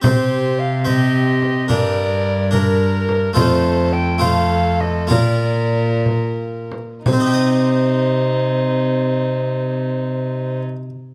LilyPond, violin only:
\new Staff \with { instrumentName = "Violin" } { \time 6/8 \key c \dorian \tempo 4. = 65 g'4. g'4. | bes'4. bes'4. | a'4. a'4. | bes'2~ bes'8 r8 |
ees'2.~ | ees'2. | }